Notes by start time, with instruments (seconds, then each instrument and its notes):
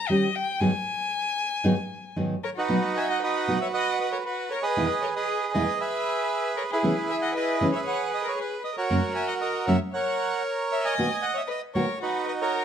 0.08 nylon-string guitar D#3 G3 C#4 G4, violin D#5
0.35 violin G5
0.60 nylon-string guitar G#2 D#3 F#3 B3 D#4 G#4, violin G#5
1.64 nylon-string guitar G#2 D#3 F#3 B3 D#4 G#4
2.16 nylon-string guitar G#2 D#3 F#3 B3 D#4 G#4
2.43 violin A#4, bandoneon C#5
2.56 bandoneon D#4 F#4 B4, violin F#4
2.69 nylon-string guitar B2 F#3 B3 D#4 F#4
2.97 violin E5, bandoneon G#5
3.10 violin D#5, bandoneon F#5
3.22 bandoneon F#4 B4 D#5, violin B4
3.48 nylon-string guitar B2 F#3 B3 D#4 F#4
3.61 violin C#5, bandoneon E5
3.74 bandoneon B4 D#5 F#5, violin D#5
4.00 violin B4, bandoneon D#5
4.12 violin A#4, bandoneon C#5
4.25 violin F#4, bandoneon B4
4.51 violin A#4, bandoneon C#5
4.63 bandoneon G#4 B4 D#5, violin B4
4.77 nylon-string guitar E2 B2 D#3 G#3 B3 E4
5.01 violin A#4, bandoneon C#5
5.14 violin G#4, bandoneon G#4 B4 D#5
5.54 nylon-string guitar E2 B2 D#3 G#3 B3 E4, violin B4, bandoneon D#5
5.78 bandoneon G#4 B4 E5, violin B4
6.57 violin A#4, bandoneon C#5
6.70 bandoneon E4 G#4 B4, violin G#4
6.83 nylon-string guitar C#3 E3 B3 C#4 G#4
7.10 violin E5, bandoneon G#5
7.22 violin D#5, bandoneon F#5
7.35 bandoneon G#4 B4 D#5, violin B4
7.61 nylon-string guitar C#3 E3 B3 C#4 G#4
7.72 violin C#5, bandoneon E5
7.84 violin C#5, bandoneon F#5
7.88 bandoneon B4
8.10 violin B4
8.14 bandoneon D#5
8.23 violin A#4
8.28 bandoneon C#5
8.36 violin G#4
8.40 bandoneon B4
8.61 violin B4, bandoneon D#5
8.75 bandoneon F#4 A#4 C#5, violin A#4
8.90 nylon-string guitar F#2 C#3 F#3 A#3 C#4 F#4
9.14 violin E5, bandoneon G#5
9.28 violin D#5, bandoneon F#5
9.40 violin A#4, bandoneon D#5
9.67 nylon-string guitar F#2 C#3 F#3 A#3 C#4 F#4, violin C#5, bandoneon E5
9.92 bandoneon A#4 C#5 F#5, violin C#5
10.71 violin C#5, bandoneon E5
10.84 violin D#5, bandoneon D#5 G#5
10.98 nylon-string guitar B2 D#3 A#3 B3 F#4
11.22 violin D#5, bandoneon F#5
11.35 violin C#5, bandoneon E5
11.47 violin B4, bandoneon D#5
11.74 nylon-string guitar B2 D#3 A#3 B3 F#4, violin A#4, bandoneon C#5
12.00 bandoneon D#4 F#4 B4, violin F#4
12.25 violin B4, bandoneon D#5
12.41 bandoneon F#4 A#4 C#5, violin A#4